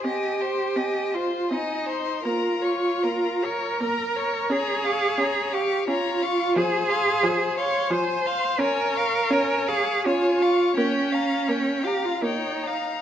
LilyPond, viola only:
\new Staff \with { instrumentName = "Viola" } { \time 3/4 \key bes \dorian \tempo 4 = 83 c'4 c'4 c'4 | bes4 bes4 bes4 | des'4 des'4 des'4 | \key f \minor f4 f4 f4 |
des'4 des'4 des'4 | bes4 bes4 bes4 | }